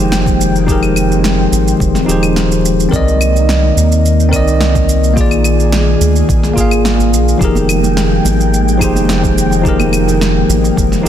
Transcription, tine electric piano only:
0, 0, Header, 1, 2, 480
1, 0, Start_track
1, 0, Tempo, 560748
1, 582, Time_signature, 4, 2, 24, 8
1, 9488, End_track
2, 0, Start_track
2, 0, Title_t, "Tine electric piano"
2, 0, Program_c, 0, 4
2, 0, Control_c, 0, 64, 127
2, 0, Note_on_c, 0, 53, 88
2, 0, Note_on_c, 0, 63, 75
2, 0, Note_on_c, 0, 67, 82
2, 0, Note_on_c, 0, 68, 78
2, 0, Note_on_c, 0, 70, 91
2, 0, Note_on_c, 0, 72, 94
2, 541, Note_off_c, 0, 53, 0
2, 549, Note_off_c, 0, 63, 0
2, 554, Note_on_c, 0, 53, 80
2, 557, Note_off_c, 0, 67, 0
2, 564, Note_off_c, 0, 68, 0
2, 569, Note_on_c, 0, 63, 77
2, 572, Note_off_c, 0, 72, 0
2, 584, Note_on_c, 0, 67, 77
2, 601, Note_on_c, 0, 68, 82
2, 616, Note_off_c, 0, 70, 0
2, 616, Note_on_c, 0, 70, 94
2, 1741, Note_off_c, 0, 53, 0
2, 1748, Note_off_c, 0, 63, 0
2, 1750, Note_on_c, 0, 53, 87
2, 1756, Note_off_c, 0, 67, 0
2, 1764, Note_off_c, 0, 68, 0
2, 1764, Note_on_c, 0, 63, 81
2, 1771, Note_off_c, 0, 70, 0
2, 1781, Note_on_c, 0, 67, 80
2, 1797, Note_on_c, 0, 68, 77
2, 1811, Note_on_c, 0, 72, 93
2, 2458, Note_off_c, 0, 53, 0
2, 2465, Note_off_c, 0, 63, 0
2, 2472, Note_on_c, 0, 60, 85
2, 2474, Note_off_c, 0, 67, 0
2, 2482, Note_off_c, 0, 68, 0
2, 2489, Note_off_c, 0, 72, 0
2, 2492, Note_on_c, 0, 70, 80
2, 2511, Control_c, 0, 64, 0
2, 2511, Note_on_c, 0, 74, 84
2, 2533, Note_on_c, 0, 75, 95
2, 2649, Control_c, 0, 64, 127
2, 3659, Note_off_c, 0, 60, 0
2, 3669, Note_off_c, 0, 70, 0
2, 3672, Note_on_c, 0, 60, 84
2, 3679, Note_off_c, 0, 74, 0
2, 3690, Note_off_c, 0, 75, 0
2, 3693, Note_on_c, 0, 70, 74
2, 3713, Note_on_c, 0, 74, 85
2, 3733, Note_on_c, 0, 75, 96
2, 4379, Note_off_c, 0, 60, 0
2, 4390, Note_off_c, 0, 70, 0
2, 4398, Note_on_c, 0, 58, 84
2, 4400, Note_off_c, 0, 74, 0
2, 4410, Note_off_c, 0, 75, 0
2, 4417, Note_on_c, 0, 65, 76
2, 4433, Control_c, 0, 64, 0
2, 4435, Note_on_c, 0, 68, 76
2, 4457, Note_on_c, 0, 74, 92
2, 4588, Control_c, 0, 64, 127
2, 5582, Note_off_c, 0, 58, 0
2, 5592, Note_off_c, 0, 65, 0
2, 5592, Note_on_c, 0, 58, 89
2, 5601, Note_off_c, 0, 68, 0
2, 5612, Note_off_c, 0, 74, 0
2, 5613, Note_on_c, 0, 65, 77
2, 5633, Note_on_c, 0, 68, 82
2, 5654, Note_on_c, 0, 77, 96
2, 6300, Note_off_c, 0, 58, 0
2, 6310, Note_off_c, 0, 65, 0
2, 6316, Note_on_c, 0, 53, 88
2, 6320, Note_off_c, 0, 68, 0
2, 6329, Note_on_c, 0, 63, 75
2, 6330, Note_off_c, 0, 77, 0
2, 6346, Note_on_c, 0, 67, 79
2, 6352, Control_c, 0, 64, 0
2, 6360, Note_on_c, 0, 68, 78
2, 6373, Note_on_c, 0, 70, 97
2, 6514, Control_c, 0, 64, 127
2, 7502, Note_off_c, 0, 53, 0
2, 7508, Note_off_c, 0, 63, 0
2, 7511, Note_on_c, 0, 53, 87
2, 7516, Note_off_c, 0, 67, 0
2, 7523, Note_off_c, 0, 68, 0
2, 7526, Note_on_c, 0, 63, 81
2, 7530, Note_off_c, 0, 70, 0
2, 7539, Note_on_c, 0, 67, 80
2, 7554, Note_on_c, 0, 68, 80
2, 7570, Note_on_c, 0, 72, 96
2, 8219, Note_off_c, 0, 53, 0
2, 8226, Note_off_c, 0, 63, 0
2, 8232, Note_on_c, 0, 53, 87
2, 8233, Note_off_c, 0, 67, 0
2, 8240, Note_off_c, 0, 68, 0
2, 8246, Note_on_c, 0, 63, 83
2, 8248, Note_off_c, 0, 72, 0
2, 8263, Note_on_c, 0, 67, 82
2, 8278, Note_on_c, 0, 68, 83
2, 8291, Note_on_c, 0, 70, 102
2, 9419, Note_off_c, 0, 53, 0
2, 9427, Note_off_c, 0, 63, 0
2, 9431, Note_on_c, 0, 53, 85
2, 9435, Note_off_c, 0, 67, 0
2, 9443, Note_off_c, 0, 68, 0
2, 9445, Note_on_c, 0, 63, 84
2, 9449, Note_off_c, 0, 70, 0
2, 9461, Note_on_c, 0, 67, 79
2, 9488, Note_off_c, 0, 53, 0
2, 9488, Note_off_c, 0, 63, 0
2, 9488, Note_off_c, 0, 67, 0
2, 9488, End_track
0, 0, End_of_file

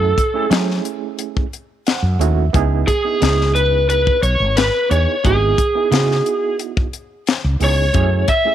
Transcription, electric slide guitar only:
0, 0, Header, 1, 2, 480
1, 0, Start_track
1, 0, Key_signature, 4, "minor"
1, 0, Tempo, 675676
1, 1802, Time_signature, 4, 2, 24, 8
1, 6072, End_track
2, 0, Start_track
2, 0, Title_t, "Electric slide guitar"
2, 0, Program_c, 0, 29
2, 0, Note_on_c, 0, 69, 79
2, 342, Note_off_c, 0, 69, 0
2, 2041, Note_on_c, 0, 68, 80
2, 2493, Note_off_c, 0, 68, 0
2, 2521, Note_on_c, 0, 71, 79
2, 2758, Note_off_c, 0, 71, 0
2, 2767, Note_on_c, 0, 71, 98
2, 3003, Note_off_c, 0, 71, 0
2, 3005, Note_on_c, 0, 73, 82
2, 3245, Note_on_c, 0, 71, 96
2, 3251, Note_off_c, 0, 73, 0
2, 3486, Note_off_c, 0, 71, 0
2, 3489, Note_on_c, 0, 73, 89
2, 3732, Note_off_c, 0, 73, 0
2, 3736, Note_on_c, 0, 68, 85
2, 4660, Note_off_c, 0, 68, 0
2, 5426, Note_on_c, 0, 73, 89
2, 5889, Note_on_c, 0, 76, 106
2, 5908, Note_off_c, 0, 73, 0
2, 6072, Note_off_c, 0, 76, 0
2, 6072, End_track
0, 0, End_of_file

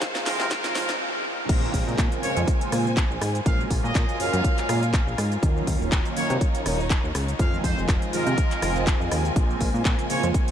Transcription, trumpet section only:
0, 0, Header, 1, 2, 480
1, 0, Start_track
1, 0, Key_signature, -5, "minor"
1, 0, Tempo, 491803
1, 1456, Time_signature, 4, 2, 24, 8
1, 10260, End_track
2, 0, Start_track
2, 0, Title_t, "Trumpet section"
2, 0, Program_c, 0, 61
2, 255, Note_on_c, 0, 70, 96
2, 932, Note_off_c, 0, 70, 0
2, 2178, Note_on_c, 0, 73, 95
2, 2342, Note_off_c, 0, 73, 0
2, 3377, Note_on_c, 0, 77, 97
2, 3542, Note_off_c, 0, 77, 0
2, 3747, Note_on_c, 0, 75, 96
2, 4074, Note_off_c, 0, 75, 0
2, 4096, Note_on_c, 0, 77, 93
2, 4773, Note_off_c, 0, 77, 0
2, 6018, Note_on_c, 0, 73, 93
2, 6182, Note_off_c, 0, 73, 0
2, 7220, Note_on_c, 0, 77, 96
2, 7384, Note_off_c, 0, 77, 0
2, 7460, Note_on_c, 0, 72, 98
2, 7624, Note_off_c, 0, 72, 0
2, 7939, Note_on_c, 0, 70, 93
2, 8614, Note_off_c, 0, 70, 0
2, 9858, Note_on_c, 0, 73, 94
2, 10023, Note_off_c, 0, 73, 0
2, 10260, End_track
0, 0, End_of_file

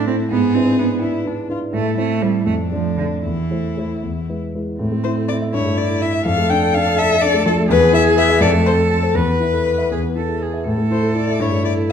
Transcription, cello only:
0, 0, Header, 1, 2, 480
1, 0, Start_track
1, 0, Key_signature, 0, "minor"
1, 0, Tempo, 476569
1, 313, Time_signature, 6, 3, 24, 8
1, 2237, Tempo, 511945
1, 5117, Tempo, 478469
1, 7997, Tempo, 497100
1, 11626, End_track
2, 0, Start_track
2, 0, Title_t, "Cello"
2, 0, Program_c, 0, 42
2, 70, Note_on_c, 0, 60, 84
2, 150, Note_off_c, 0, 60, 0
2, 313, Note_on_c, 0, 59, 94
2, 547, Note_on_c, 0, 60, 95
2, 562, Note_off_c, 0, 59, 0
2, 791, Note_on_c, 0, 59, 83
2, 806, Note_off_c, 0, 60, 0
2, 1030, Note_off_c, 0, 59, 0
2, 1754, Note_on_c, 0, 57, 89
2, 1977, Note_off_c, 0, 57, 0
2, 1988, Note_on_c, 0, 57, 91
2, 2235, Note_on_c, 0, 55, 80
2, 2249, Note_off_c, 0, 57, 0
2, 2453, Note_off_c, 0, 55, 0
2, 2459, Note_on_c, 0, 57, 83
2, 2534, Note_off_c, 0, 57, 0
2, 2709, Note_on_c, 0, 53, 74
2, 2936, Note_off_c, 0, 53, 0
2, 2942, Note_on_c, 0, 50, 66
2, 3017, Note_off_c, 0, 50, 0
2, 3191, Note_on_c, 0, 52, 66
2, 3912, Note_off_c, 0, 52, 0
2, 4649, Note_on_c, 0, 60, 73
2, 5319, Note_off_c, 0, 60, 0
2, 5362, Note_on_c, 0, 64, 77
2, 6066, Note_off_c, 0, 64, 0
2, 6081, Note_on_c, 0, 69, 96
2, 7488, Note_off_c, 0, 69, 0
2, 7519, Note_on_c, 0, 68, 120
2, 8234, Note_on_c, 0, 69, 103
2, 8248, Note_off_c, 0, 68, 0
2, 8966, Note_on_c, 0, 71, 80
2, 8980, Note_off_c, 0, 69, 0
2, 9635, Note_off_c, 0, 71, 0
2, 9687, Note_on_c, 0, 68, 64
2, 9765, Note_off_c, 0, 68, 0
2, 9928, Note_on_c, 0, 69, 62
2, 10175, Note_on_c, 0, 68, 58
2, 10189, Note_off_c, 0, 69, 0
2, 10413, Note_off_c, 0, 68, 0
2, 10417, Note_on_c, 0, 69, 84
2, 11137, Note_on_c, 0, 64, 73
2, 11151, Note_off_c, 0, 69, 0
2, 11626, Note_off_c, 0, 64, 0
2, 11626, End_track
0, 0, End_of_file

